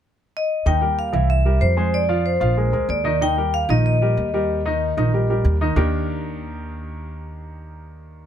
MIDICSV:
0, 0, Header, 1, 4, 480
1, 0, Start_track
1, 0, Key_signature, -3, "major"
1, 0, Tempo, 318979
1, 999, Time_signature, 4, 2, 24, 8
1, 12434, End_track
2, 0, Start_track
2, 0, Title_t, "Vibraphone"
2, 0, Program_c, 0, 11
2, 552, Note_on_c, 0, 75, 83
2, 1004, Note_on_c, 0, 79, 89
2, 1028, Note_off_c, 0, 75, 0
2, 1447, Note_off_c, 0, 79, 0
2, 1485, Note_on_c, 0, 77, 80
2, 1955, Note_on_c, 0, 76, 81
2, 1974, Note_off_c, 0, 77, 0
2, 2425, Note_on_c, 0, 72, 86
2, 2449, Note_off_c, 0, 76, 0
2, 2921, Note_on_c, 0, 74, 84
2, 2924, Note_off_c, 0, 72, 0
2, 3364, Note_off_c, 0, 74, 0
2, 3397, Note_on_c, 0, 72, 79
2, 4296, Note_off_c, 0, 72, 0
2, 4363, Note_on_c, 0, 74, 80
2, 4806, Note_off_c, 0, 74, 0
2, 4848, Note_on_c, 0, 79, 92
2, 5289, Note_off_c, 0, 79, 0
2, 5326, Note_on_c, 0, 77, 88
2, 5569, Note_off_c, 0, 77, 0
2, 5573, Note_on_c, 0, 75, 75
2, 5791, Note_off_c, 0, 75, 0
2, 5809, Note_on_c, 0, 75, 73
2, 8149, Note_off_c, 0, 75, 0
2, 12434, End_track
3, 0, Start_track
3, 0, Title_t, "Upright piano"
3, 0, Program_c, 1, 0
3, 989, Note_on_c, 1, 51, 63
3, 995, Note_on_c, 1, 63, 67
3, 1001, Note_on_c, 1, 75, 63
3, 1189, Note_off_c, 1, 51, 0
3, 1193, Note_off_c, 1, 63, 0
3, 1196, Note_off_c, 1, 75, 0
3, 1218, Note_on_c, 1, 55, 60
3, 1226, Note_on_c, 1, 67, 56
3, 1228, Note_on_c, 1, 70, 63
3, 1619, Note_off_c, 1, 55, 0
3, 1624, Note_off_c, 1, 67, 0
3, 1625, Note_off_c, 1, 70, 0
3, 1695, Note_on_c, 1, 52, 67
3, 1702, Note_on_c, 1, 64, 69
3, 1707, Note_on_c, 1, 76, 65
3, 2097, Note_off_c, 1, 52, 0
3, 2101, Note_off_c, 1, 64, 0
3, 2104, Note_off_c, 1, 76, 0
3, 2186, Note_on_c, 1, 55, 61
3, 2193, Note_on_c, 1, 67, 57
3, 2196, Note_on_c, 1, 70, 63
3, 2583, Note_off_c, 1, 55, 0
3, 2587, Note_off_c, 1, 67, 0
3, 2589, Note_off_c, 1, 70, 0
3, 2657, Note_on_c, 1, 56, 67
3, 2662, Note_on_c, 1, 68, 72
3, 2671, Note_on_c, 1, 72, 72
3, 3058, Note_off_c, 1, 56, 0
3, 3060, Note_off_c, 1, 68, 0
3, 3066, Note_off_c, 1, 72, 0
3, 3141, Note_on_c, 1, 65, 71
3, 3143, Note_on_c, 1, 53, 70
3, 3145, Note_on_c, 1, 77, 70
3, 3540, Note_off_c, 1, 65, 0
3, 3541, Note_off_c, 1, 53, 0
3, 3542, Note_off_c, 1, 77, 0
3, 3613, Note_on_c, 1, 53, 69
3, 3619, Note_on_c, 1, 65, 70
3, 3623, Note_on_c, 1, 77, 68
3, 3818, Note_off_c, 1, 53, 0
3, 3822, Note_off_c, 1, 65, 0
3, 3824, Note_off_c, 1, 77, 0
3, 3867, Note_on_c, 1, 56, 58
3, 3873, Note_on_c, 1, 68, 56
3, 3878, Note_on_c, 1, 70, 61
3, 4067, Note_off_c, 1, 56, 0
3, 4070, Note_off_c, 1, 68, 0
3, 4073, Note_off_c, 1, 70, 0
3, 4103, Note_on_c, 1, 56, 61
3, 4107, Note_on_c, 1, 68, 63
3, 4111, Note_on_c, 1, 70, 67
3, 4501, Note_off_c, 1, 56, 0
3, 4504, Note_off_c, 1, 68, 0
3, 4506, Note_off_c, 1, 70, 0
3, 4575, Note_on_c, 1, 51, 77
3, 4585, Note_on_c, 1, 63, 78
3, 4589, Note_on_c, 1, 75, 77
3, 4780, Note_off_c, 1, 51, 0
3, 4786, Note_off_c, 1, 63, 0
3, 4788, Note_off_c, 1, 75, 0
3, 4831, Note_on_c, 1, 51, 66
3, 4835, Note_on_c, 1, 63, 71
3, 4841, Note_on_c, 1, 75, 70
3, 5030, Note_off_c, 1, 51, 0
3, 5032, Note_off_c, 1, 63, 0
3, 5036, Note_off_c, 1, 75, 0
3, 5079, Note_on_c, 1, 55, 62
3, 5084, Note_on_c, 1, 67, 65
3, 5087, Note_on_c, 1, 70, 66
3, 5472, Note_off_c, 1, 55, 0
3, 5475, Note_off_c, 1, 67, 0
3, 5476, Note_off_c, 1, 70, 0
3, 5555, Note_on_c, 1, 51, 71
3, 5562, Note_on_c, 1, 63, 77
3, 5565, Note_on_c, 1, 75, 68
3, 5950, Note_off_c, 1, 51, 0
3, 5954, Note_off_c, 1, 63, 0
3, 5956, Note_off_c, 1, 75, 0
3, 6039, Note_on_c, 1, 55, 62
3, 6048, Note_on_c, 1, 67, 62
3, 6053, Note_on_c, 1, 70, 66
3, 6433, Note_off_c, 1, 55, 0
3, 6438, Note_off_c, 1, 67, 0
3, 6441, Note_off_c, 1, 70, 0
3, 6524, Note_on_c, 1, 55, 73
3, 6530, Note_on_c, 1, 67, 69
3, 6534, Note_on_c, 1, 70, 66
3, 6917, Note_off_c, 1, 55, 0
3, 6920, Note_off_c, 1, 67, 0
3, 6923, Note_off_c, 1, 70, 0
3, 7001, Note_on_c, 1, 51, 71
3, 7007, Note_on_c, 1, 63, 75
3, 7012, Note_on_c, 1, 75, 70
3, 7395, Note_off_c, 1, 51, 0
3, 7399, Note_off_c, 1, 63, 0
3, 7402, Note_off_c, 1, 75, 0
3, 7479, Note_on_c, 1, 51, 69
3, 7488, Note_on_c, 1, 63, 66
3, 7492, Note_on_c, 1, 75, 71
3, 7677, Note_off_c, 1, 51, 0
3, 7683, Note_off_c, 1, 63, 0
3, 7685, Note_off_c, 1, 75, 0
3, 7730, Note_on_c, 1, 55, 57
3, 7732, Note_on_c, 1, 67, 58
3, 7738, Note_on_c, 1, 70, 57
3, 7924, Note_off_c, 1, 55, 0
3, 7925, Note_off_c, 1, 67, 0
3, 7929, Note_off_c, 1, 70, 0
3, 7970, Note_on_c, 1, 55, 62
3, 7973, Note_on_c, 1, 67, 64
3, 7980, Note_on_c, 1, 70, 58
3, 8362, Note_off_c, 1, 55, 0
3, 8363, Note_off_c, 1, 67, 0
3, 8367, Note_off_c, 1, 70, 0
3, 8443, Note_on_c, 1, 51, 74
3, 8444, Note_on_c, 1, 63, 74
3, 8450, Note_on_c, 1, 75, 71
3, 8640, Note_off_c, 1, 51, 0
3, 8641, Note_off_c, 1, 63, 0
3, 8645, Note_off_c, 1, 75, 0
3, 8669, Note_on_c, 1, 62, 76
3, 8670, Note_on_c, 1, 58, 70
3, 8671, Note_on_c, 1, 51, 81
3, 8675, Note_on_c, 1, 63, 67
3, 8676, Note_on_c, 1, 67, 74
3, 8682, Note_on_c, 1, 70, 85
3, 12434, Note_off_c, 1, 51, 0
3, 12434, Note_off_c, 1, 58, 0
3, 12434, Note_off_c, 1, 62, 0
3, 12434, Note_off_c, 1, 63, 0
3, 12434, Note_off_c, 1, 67, 0
3, 12434, Note_off_c, 1, 70, 0
3, 12434, End_track
4, 0, Start_track
4, 0, Title_t, "Upright bass"
4, 0, Program_c, 2, 32
4, 992, Note_on_c, 2, 39, 86
4, 1663, Note_off_c, 2, 39, 0
4, 1706, Note_on_c, 2, 36, 84
4, 2379, Note_off_c, 2, 36, 0
4, 2432, Note_on_c, 2, 41, 78
4, 3548, Note_off_c, 2, 41, 0
4, 3625, Note_on_c, 2, 34, 86
4, 4076, Note_off_c, 2, 34, 0
4, 4110, Note_on_c, 2, 38, 65
4, 4335, Note_off_c, 2, 38, 0
4, 4344, Note_on_c, 2, 39, 86
4, 5467, Note_off_c, 2, 39, 0
4, 5549, Note_on_c, 2, 34, 90
4, 6223, Note_off_c, 2, 34, 0
4, 6278, Note_on_c, 2, 39, 83
4, 7397, Note_off_c, 2, 39, 0
4, 7487, Note_on_c, 2, 34, 83
4, 8155, Note_off_c, 2, 34, 0
4, 8194, Note_on_c, 2, 39, 85
4, 8623, Note_off_c, 2, 39, 0
4, 8672, Note_on_c, 2, 39, 89
4, 12434, Note_off_c, 2, 39, 0
4, 12434, End_track
0, 0, End_of_file